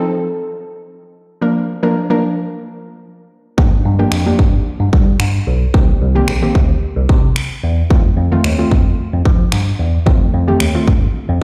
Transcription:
0.00 0.46 F3 loud
0.00 0.47 C4 medium
0.00 0.47 D#4 medium
0.00 0.47 A4 loud
1.41 1.62 F3 medium
1.41 1.62 A#3 medium
1.41 1.62 D4 medium
1.41 1.62 A#4 loud
1.83 1.95 F3 loud
1.83 1.95 A#3 medium
1.83 1.95 D4 medium
1.83 1.95 A#4 loud
2.10 2.63 F3 loud
2.10 2.63 A#3 medium
2.10 2.63 D4 medium
2.10 2.63 A#4 loud
3.58 3.76 G2 medium
3.58 3.78 F3 medium
3.58 3.78 A#3 medium
3.58 3.78 D4 medium
3.58 3.78 G4 loud
3.58 kick loud
3.85 4.03 G2 loud
3.99 4.11 F3 medium
3.99 4.12 A#3 medium
3.99 4.12 D4 medium
3.99 4.12 G4 loud
4.12 4.30 F2 medium
4.12 finger snap loud
4.26 4.79 F3 loud
4.26 4.79 A#3 medium
4.26 4.79 D4 medium
4.26 4.79 G4 loud
4.39 4.57 G2 medium
4.39 kick medium
4.80 4.89 G2 medium
4.93 5.11 G3 medium
4.93 kick loud
5.20 5.38 G2 medium
5.20 finger snap loud
5.47 5.65 B1 medium
5.74 5.92 C2 loud
5.74 5.94 D#3 loud
5.74 5.94 A#3 medium
5.74 5.94 C4 medium
5.74 5.95 G4 loud
5.74 kick loud
6.01 6.19 C2 loud
6.15 6.28 D#3 medium
6.15 6.28 A#3 medium
6.15 6.28 C4 medium
6.15 6.28 G4 loud
6.28 6.46 A#1 medium
6.28 finger snap loud
6.42 6.95 D#3 medium
6.42 6.95 A#3 medium
6.42 6.95 C4 medium
6.42 6.95 G4 loud
6.55 6.73 D2 medium
6.55 kick medium
6.97 7.05 C2 medium
7.09 7.27 C3 loud
7.09 kick loud
7.36 finger snap loud
7.64 7.81 E2 medium
7.90 8.08 F2 medium
7.90 8.10 D#3 medium
7.90 8.11 A3 medium
7.90 8.11 C4 medium
7.90 8.11 F4 loud
7.90 kick loud
8.17 8.35 F2 medium
8.32 8.44 D#3 loud
8.32 8.44 A3 medium
8.32 8.44 C4 medium
8.32 8.44 F4 loud
8.44 8.62 D#2 medium
8.44 finger snap loud
8.59 9.11 D#3 medium
8.59 9.11 A3 medium
8.59 9.11 C4 medium
8.59 9.12 F4 loud
8.71 8.89 F2 medium
8.71 kick medium
9.13 9.21 F2 medium
9.25 9.43 F3 loud
9.25 kick loud
9.52 9.70 G2 medium
9.52 finger snap loud
9.80 9.98 E2 medium
10.06 10.25 F2 loud
10.06 10.27 D#3 medium
10.06 10.27 A3 medium
10.06 10.27 C4 medium
10.06 10.27 F4 loud
10.06 kick loud
10.34 10.52 F2 loud
10.48 10.60 D#3 loud
10.48 10.60 A3 medium
10.48 10.60 C4 medium
10.48 10.60 G4 loud
10.60 10.79 D#2 medium
10.60 finger snap loud
10.75 11.27 D#3 medium
10.75 11.27 A3 medium
10.75 11.28 C4 medium
10.75 11.28 F4 loud
10.88 11.06 G2 medium
10.88 kick medium
11.29 11.38 F2 loud

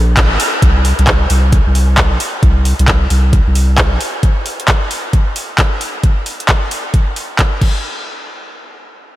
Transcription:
0.00 0.33 A#1 medium
0.17 kick loud
0.17 clap loud
0.17 closed hi-hat medium
0.31 0.37 G#1 medium
0.40 open hi-hat loud
0.62 0.93 C2 loud
0.62 kick loud
0.62 closed hi-hat medium
0.85 open hi-hat loud
0.99 1.26 C2 loud
0.99 closed hi-hat medium
1.07 kick loud
1.07 clap loud
1.07 closed hi-hat medium
1.30 1.61 C2 medium
1.30 open hi-hat loud
1.52 kick loud
1.52 closed hi-hat medium
1.67 2.13 C2 medium
1.75 open hi-hat loud
1.98 kick loud
1.98 clap loud
1.98 closed hi-hat medium
2.12 2.18 A#1 medium
2.20 open hi-hat loud
2.43 2.73 C2 loud
2.43 kick loud
2.43 closed hi-hat medium
2.65 open hi-hat loud
2.79 3.07 C2 loud
2.79 closed hi-hat medium
2.88 kick loud
2.88 clap loud
2.88 closed hi-hat medium
3.10 3.41 C2 medium
3.10 open hi-hat loud
3.33 kick loud
3.33 closed hi-hat medium
3.47 3.94 C2 medium
3.55 open hi-hat medium
3.78 kick loud
3.78 clap loud
3.78 closed hi-hat medium
3.92 3.98 A#1 medium
4.01 open hi-hat loud
4.23 kick loud
4.23 closed hi-hat medium
4.46 open hi-hat loud
4.60 closed hi-hat medium
4.68 kick loud
4.68 clap loud
4.68 closed hi-hat medium
4.91 open hi-hat loud
5.13 kick loud
5.13 closed hi-hat medium
5.36 open hi-hat medium
5.58 kick loud
5.58 clap loud
5.58 closed hi-hat medium
5.81 open hi-hat loud
6.03 kick loud
6.03 closed hi-hat medium
6.26 open hi-hat medium
6.40 closed hi-hat medium
6.49 kick loud
6.49 clap loud
6.49 closed hi-hat medium
6.71 open hi-hat medium
6.94 kick loud
6.94 closed hi-hat medium
7.16 open hi-hat medium
7.39 kick loud
7.39 clap loud
7.39 closed hi-hat medium
7.61 kick loud
7.61 crash medium

